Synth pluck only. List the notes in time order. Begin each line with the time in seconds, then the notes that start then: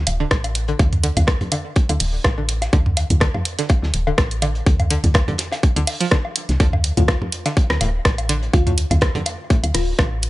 0.20 D3
0.68 D3
1.03 D3
1.52 D3
1.89 D3
2.38 D3
2.73 D3
3.21 D3
3.59 D3
4.07 D3
4.42 D3
4.91 D3
5.28 D3
5.76 D3
6.00 F3
6.11 D3
6.60 D3
6.97 A2
7.46 D3
7.81 A2
8.29 D3
8.67 A2
9.15 D3
9.50 A2
9.99 D3